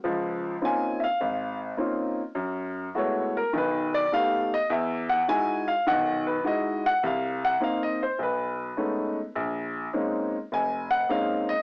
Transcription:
0.04 0.55 C#2 medium
0.04 0.55 F3 medium
0.61 1.04 A#3 soft
0.61 1.04 C4 soft
0.61 1.04 C#4 medium
0.61 1.04 D#4 soft
0.61 1.04 F4 medium
0.61 1.03 G#5 medium
1.00 1.02 E5 medium
1.00 1.57 F5 medium
1.21 1.71 G#1 medium
1.77 2.20 A#3 medium
1.77 2.20 C4 medium
1.77 2.20 C#4 soft
1.77 2.20 D#4 soft
1.77 2.20 F4 medium
2.35 2.86 F#2 medium
2.95 3.37 G#3 medium
2.95 3.37 A3 soft
2.95 3.37 B3 medium
2.95 3.37 E4 medium
2.95 3.37 F#4 medium
2.95 3.35 C#5 medium
3.37 3.53 A#4 medium
3.53 4.04 B1 medium
3.53 4.04 D#3 medium
3.58 3.94 B4 medium
3.94 4.11 D5 medium
4.12 4.54 A3 medium
4.12 4.53 B3 medium
4.12 4.54 D#4 soft
4.12 4.54 G4 medium
4.12 4.51 F5 loud
4.54 4.70 D#5 loud
4.70 5.20 E2 medium
4.70 5.09 E5 medium
5.09 5.27 F#5 medium
5.28 5.70 G#3 medium
5.28 5.70 D#4 medium
5.28 5.70 E4 medium
5.28 5.70 F#4 medium
5.28 5.67 G#5 loud
5.68 5.85 F5 medium
5.86 6.37 B1 medium
5.86 6.37 D#3 medium
5.86 6.25 F#5 loud
6.27 6.44 B4 medium
6.44 6.86 G#3 medium
6.44 6.86 D#4 medium
6.44 6.86 E4 medium
6.44 6.86 F#4 medium
6.44 6.84 D#5 medium
6.86 7.02 F#5 loud
7.03 7.53 C2 medium
7.03 7.43 F5 medium
7.45 7.61 F#5 loud
7.60 8.02 A#3 medium
7.60 8.02 C4 medium
7.60 8.03 D#4 medium
7.60 7.81 F5 medium
7.83 8.00 D#5 medium
8.03 8.20 C5 medium
8.19 8.69 B1 medium
8.23 9.15 B4 medium
8.77 9.19 G#3 medium
8.77 9.19 A3 soft
8.77 9.19 B3 soft
8.77 9.19 C#4 soft
8.77 9.19 D#4 medium
9.35 9.86 A#1 medium
9.93 10.35 G#3 medium
9.93 10.35 A#3 medium
9.93 10.35 C4 medium
9.93 10.35 C#4 medium
9.93 10.35 D#4 medium
10.52 11.02 F1 medium
10.52 10.91 G#5 medium
10.91 11.08 F#5 loud
11.09 11.51 G#3 medium
11.09 11.51 A#3 medium
11.09 11.51 C4 medium
11.09 11.52 C#4 soft
11.09 11.52 D#4 medium
11.09 11.49 F5 medium
11.49 11.62 D#5 medium

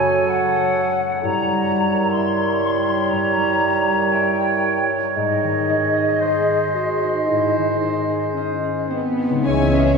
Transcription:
0.00 1.27 F#2 medium
0.00 1.27 C#3 soft
0.00 0.97 F#3 medium
0.00 0.99 C#4 soft
0.00 1.20 A4 soft
0.00 0.32 C#5 soft
0.00 0.92 C#5 medium
0.00 0.33 G#5 medium
0.00 2.42 C#6 soft
0.10 0.55 A4 soft
0.32 0.76 C#5 soft
0.32 1.23 F#5 medium
0.56 1.27 A4 soft
0.78 2.62 C#5 soft
1.01 4.91 C#4 soft
1.23 3.11 G2 soft
1.23 5.11 G3 medium
1.23 4.80 E4 soft
1.23 6.22 C#5 soft
1.23 2.13 A#5 medium
1.47 3.36 G3 soft
1.70 2.86 E4 soft
1.93 2.38 A#4 soft
2.14 4.12 E5 soft
2.14 3.09 C6 medium
2.40 3.87 A#4 soft
2.64 4.63 C#5 soft
2.88 3.61 E4 soft
3.09 5.20 G2 soft
3.09 4.10 A#5 medium
3.37 5.20 G3 soft
3.63 4.89 E4 soft
3.88 4.38 A#4 soft
4.11 5.20 E5 soft
4.11 4.85 G5 medium
4.39 5.20 A#4 soft
4.64 5.20 C#5 soft
4.90 5.20 E4 soft
5.14 7.29 G#2 soft
5.14 9.04 G#3 soft
5.14 6.05 D#4 soft
5.14 8.30 D#5 medium
5.43 7.56 D#3 soft
5.69 7.02 D#4 soft
5.97 6.48 G#4 soft
6.21 6.77 G#4 soft
6.21 9.07 C5 soft
6.21 8.36 D#5 soft
6.49 8.09 G#4 soft
6.75 7.27 F#4 soft
6.75 8.89 C5 soft
7.04 7.82 D#4 soft
7.28 9.52 G#2 soft
7.28 7.83 E4 soft
7.57 9.52 D#3 soft
7.81 8.35 D#4 soft
7.81 9.17 D#4 soft
8.10 8.62 G#4 soft
8.34 8.92 C#4 soft
8.34 9.52 D#5 soft
8.63 9.42 G#4 soft
8.89 9.42 B3 medium
8.89 9.46 C4 soft
8.89 9.51 C5 soft
9.19 9.51 D#4 soft
9.30 9.98 C#3 soft
9.34 9.98 G#3 soft
9.38 9.98 E4 soft
9.43 9.98 C#2 medium
9.43 9.98 G#3 soft
9.43 9.98 C#4 medium
9.43 9.72 E4 soft
9.43 9.98 G#4 soft
9.43 9.98 C#5 medium
9.43 9.72 C#5 soft
9.43 9.98 E5 medium
9.43 9.72 G#5 soft
9.48 9.98 E3 soft
9.48 9.98 G#4 soft
9.74 9.98 C#4 soft
9.74 9.98 G#4 soft
9.74 9.98 E5 soft

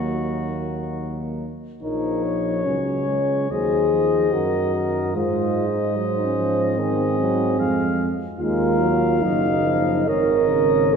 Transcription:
0.00 1.50 D#2 soft
0.00 1.46 F#3 soft
0.00 1.46 A#3 soft
0.00 1.46 D#4 soft
0.00 1.40 F#4 soft
1.81 2.67 A#1 soft
1.81 2.67 F3 soft
1.81 2.67 D#4 medium
1.81 2.25 A#4 soft
1.81 3.53 C#5 soft
2.24 3.50 C#5 soft
2.65 3.50 C#2 soft
2.65 3.09 F#3 soft
2.65 3.50 C#4 medium
3.07 3.49 G#3 soft
3.50 4.32 D#2 soft
3.50 3.93 F#3 soft
3.50 4.35 G#4 medium
3.50 4.36 C5 soft
3.50 5.15 D#5 soft
3.92 4.35 F3 soft
4.33 5.16 F#2 soft
4.33 5.16 D#3 soft
4.33 5.16 F#4 medium
4.33 4.74 A#4 soft
4.75 5.14 A#4 soft
5.14 7.61 G#2 soft
5.14 5.98 G#3 soft
5.14 5.69 F4 medium
5.14 5.96 C5 soft
5.14 7.61 D#5 soft
5.69 6.23 D#4 medium
5.97 6.40 F#3 soft
5.97 6.81 C5 soft
6.24 6.79 C#4 medium
6.38 6.79 F3 medium
6.78 7.19 D#3 medium
6.78 7.99 C4 medium
6.78 8.13 G#4 soft
7.19 7.60 F#3 medium
7.59 8.12 F2 medium
7.59 8.12 G#3 medium
7.59 8.12 F5 medium
8.39 9.23 D#2 medium
8.39 8.82 G#3 medium
8.39 9.24 F4 medium
8.39 9.25 A#4 medium
8.39 10.10 F5 medium
8.80 9.21 F#3 medium
9.22 10.07 F#1 medium
9.22 9.66 F#3 medium
9.22 10.10 D#4 medium
9.22 10.10 D#5 medium
9.64 10.07 F3 medium
10.08 10.96 G#1 medium
10.08 10.52 D#3 medium
10.08 10.95 A#4 loud
10.08 10.96 C#5 medium
10.08 10.95 D#5 medium
10.51 10.94 C#3 medium
10.93 10.96 D#3 soft

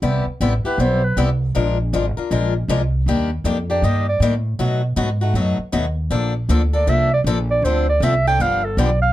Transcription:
0.02 0.25 C2 medium
0.02 0.24 C3 medium
0.02 0.24 G3 medium
0.02 0.24 B3 medium
0.02 0.24 E4 medium
0.02 0.25 G4 medium
0.26 muted upright bass stroke soft
0.40 0.63 A1 medium
0.40 0.52 C3 medium
0.40 0.52 G3 medium
0.40 0.52 B3 medium
0.40 0.53 E4 medium
0.40 0.53 G4 medium
0.64 0.79 B3 soft
0.64 0.79 E4 soft
0.64 0.78 G4 medium
0.64 0.81 B4 medium
0.64 muted upright bass stroke soft
0.78 1.15 B1 medium
0.78 1.01 C3 medium
0.78 1.01 G3 medium
0.78 1.01 B3 medium
0.78 1.01 E4 medium
0.78 1.01 G4 medium
0.78 1.06 C5 medium
1.04 1.18 B4 medium
1.17 1.54 C2 medium
1.17 1.28 C3 medium
1.17 1.29 G3 medium
1.17 1.29 B3 medium
1.17 1.29 E4 medium
1.17 1.29 G4 medium
1.55 1.92 A#1 medium
1.55 1.76 F3 medium
1.55 1.77 G#3 medium
1.55 1.77 D4 medium
1.55 1.77 F4 medium
1.55 1.77 A#4 medium
1.93 2.15 G#1 medium
1.93 2.05 F3 medium
1.93 2.05 G#3 medium
1.93 2.05 D4 medium
1.93 2.05 F4 medium
1.93 2.05 A#4 medium
2.17 2.31 D4 soft
2.17 2.31 F4 medium
2.17 2.30 A#4 medium
2.17 muted upright bass stroke soft
2.31 2.68 A#1 medium
2.31 2.53 F3 medium
2.31 2.53 G#3 medium
2.31 2.53 D4 medium
2.31 2.53 F4 medium
2.31 2.53 A#4 medium
2.68 3.06 C2 medium
2.68 2.81 F3 medium
2.68 2.81 G#3 medium
2.68 2.81 D4 medium
2.68 2.81 F4 medium
2.68 2.81 A#4 medium
3.06 3.44 D#2 medium
3.06 3.29 D#3 medium
3.06 3.29 G3 medium
3.06 3.29 A#3 medium
3.06 3.29 D4 medium
3.06 3.29 G4 medium
3.44 3.82 F2 medium
3.44 3.56 D#3 medium
3.44 3.57 G3 medium
3.44 3.57 A#3 medium
3.44 3.57 D4 medium
3.44 3.57 G4 medium
3.70 3.83 A#3 soft
3.70 3.83 D4 medium
3.70 3.83 G4 medium
3.70 3.86 D5 medium
3.82 4.20 G2 medium
3.82 4.05 D#3 medium
3.82 4.05 G3 medium
3.82 4.05 A#3 medium
3.82 4.05 D4 medium
3.82 4.06 G4 medium
3.82 4.08 D#5 medium
4.09 4.21 D5 medium
4.20 4.57 A2 medium
4.20 4.33 D#3 medium
4.20 4.33 G3 medium
4.20 4.33 A#3 medium
4.20 4.33 D4 medium
4.20 4.34 G4 medium
4.59 4.96 B2 medium
4.59 4.81 B2 medium
4.59 4.81 F#3 medium
4.59 4.81 A3 medium
4.59 4.81 D#4 medium
4.59 4.81 F#4 medium
4.96 5.33 G#2 medium
4.96 5.08 B2 medium
4.96 5.08 F#3 medium
4.96 5.08 A3 medium
4.96 5.09 D#4 medium
4.96 5.09 F#4 medium
5.21 5.34 A3 soft
5.21 5.35 D#4 soft
5.21 5.35 F#4 medium
5.34 5.57 F#2 medium
5.34 5.57 B2 medium
5.34 5.57 F#3 medium
5.34 5.57 A3 medium
5.34 5.57 D#4 medium
5.34 5.57 F#4 medium
5.58 muted upright bass stroke soft
5.72 6.10 D#2 medium
5.72 5.84 B2 medium
5.72 5.84 F#3 medium
5.72 5.84 A3 medium
5.72 5.85 D#4 medium
5.72 5.85 F#4 medium
6.11 6.48 A#1 medium
6.11 6.32 D3 medium
6.11 6.32 F3 medium
6.11 6.33 A#3 medium
6.11 6.33 D4 medium
6.11 6.33 A4 medium
6.49 6.86 D2 medium
6.49 6.61 D3 medium
6.49 6.61 F3 medium
6.49 6.61 A#3 medium
6.49 6.61 D4 medium
6.49 6.61 A4 medium
6.73 6.87 A#3 soft
6.73 6.87 D4 medium
6.73 6.87 A4 medium
6.73 6.91 D5 medium
6.87 7.24 C2 medium
6.87 7.09 D3 medium
6.87 7.09 F3 medium
6.87 7.09 A#3 medium
6.87 7.09 D4 medium
6.87 7.09 A4 medium
6.87 7.12 E5 medium
7.14 7.21 D5 medium
7.24 7.61 A#1 medium
7.24 7.37 D3 medium
7.24 7.37 F3 medium
7.24 7.37 A#3 medium
7.24 7.38 D4 medium
7.24 7.38 A4 medium
7.50 7.66 D5 medium
7.62 7.99 D2 medium
7.62 7.85 D3 medium
7.62 7.86 F3 medium
7.62 7.86 C4 medium
7.62 7.86 D4 medium
7.62 7.86 A4 medium
7.62 7.88 C5 medium
7.89 8.05 D5 medium
8.00 8.37 C2 medium
8.00 8.13 D3 medium
8.00 8.13 F3 medium
8.00 8.13 C4 medium
8.00 8.13 D4 medium
8.00 8.13 A4 medium
8.00 8.26 E5 medium
8.27 8.40 C4 soft
8.27 8.40 D4 medium
8.27 8.39 A4 medium
8.27 8.43 G5 loud
8.39 8.76 G1 medium
8.39 8.61 D3 medium
8.39 8.61 F3 medium
8.39 8.61 B3 medium
8.39 8.61 D4 medium
8.39 8.61 G4 medium
8.39 8.66 F5 medium
8.65 8.80 A4 medium
8.77 9.13 B1 medium
8.77 8.89 D3 medium
8.77 8.89 F3 medium
8.77 8.89 B3 medium
8.77 8.89 D4 medium
8.77 8.89 G4 loud
8.77 9.01 D5 medium
9.02 9.13 F5 medium

